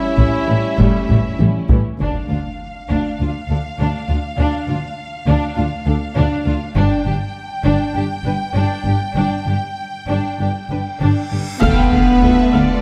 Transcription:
Already playing: G3 C#4 E4 E5
0.17 A1 A2 G3, taiko low
0.48 A1 A2 E3 G3
0.78 A1 A2 G3 A3, taiko
1.09 A1 A2 E3 G3, taiko low-mid
1.39 A1 A2 G3, taiko high
1.69 A1 A2 E3 G3, taiko low
2.00 D2 D4 F5, taiko, impact
2.30 D2 D4 F4
2.89 D2 D4, taiko
3.19 D2 D4 F4
3.48 D2 D4 A4
3.79 D2 D4
4.08 D2 D4 F4
4.38 D2 D4
4.68 D2 D4 F4
5.27 D2 D4
5.57 D2 D4 F4
5.86 D2 D4 A4
6.16 D2 D4
6.46 D2 D4 F4
6.75 G1 G2 D4 G5, taiko
7.05 G1 G2 D4 G4
7.64 G1 G2 D4, taiko
7.95 G1 G2 D4 G4
8.24 G1 G2 D4 B4
8.53 G1 G2 D4
8.84 G1 G2 D4 G4
9.15 G1 G2 D4, reverse cymbal
9.46 G1 G2 D4 G4
10.08 G1 G2 D4
10.40 G1 G2 D4 G4
10.70 G1 G2 D4 B4
11.00 G1 G2 D4
11.32 G1 G2 D4 G4
11.60 D2 A3 B3 D4 F4 A4 B4 F5 G5, concert bass drum, taiko, crash, impact
11.92 D2 A4 F5
12.22 D2 F4 A4 E5
12.53 D2 A4 D5 F5

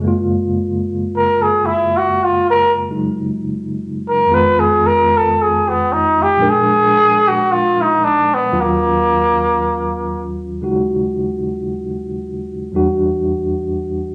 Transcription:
Already playing: F#2
0.00 C#3 G#3
0.04 A#3 F4
1.17 A#4
1.42 G#4
1.66 E4
1.97 F#4
2.24 F4
2.50 A#4
2.89 C#3 F#3 G#3 D#4
4.08 A#4
4.26 F2 D#3 G#3 B3
4.32 F4 B4
4.60 G#4
4.86 A#4
5.17 A4
5.42 G#4
5.69 B3
5.93 D#4
6.23 G4
6.37 A#2 F3 G#3 D4
6.42 A#4
6.49 G#4
7.28 F#4
7.52 F4
7.81 D#4
8.04 D4
8.34 B3
8.52 D#2 D#3 F#3 C#4 F4
8.60 A#3
10.61 C#3 G#3 D#4 F#4
12.72 E2 E3 G3 D4
12.76 F#4

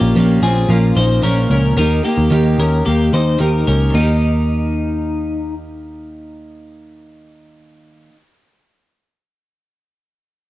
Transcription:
Already playing: A#3 C#4 F4 G4
0.01 A#1
0.15 A#1 A#2 F3 A#3 C#4 F4
0.42 A#1 C4 C#4 F4 G#4
0.46 A#3
0.68 A#1 F3 A#3 C#4 F4
0.95 A#1 A#3 C#4 D#4 F4 C5
1.22 A#1 A#2 F3 A#3 C#4 F4 A#4
1.50 C#2 C#4 A#4
1.77 D#2 D#3 A#3 D#4 G4 A#4
2.03 A#3 D#4 G4
2.18 D#2
2.30 D#2 D#3 A#3 D#4 G4
2.58 D#2 A#3 C#4 D#4 G4 A#4
2.85 D#2 D#3 A#3 D#4 G4
3.13 D#2 A#3 D#4 G4 C5
3.39 D#2 D#3 A#3 D#4 G4 A#4
3.67 C#2 C#4 A#4
3.90 D#3
3.94 D#2 A#3 D#4
4.00 G4

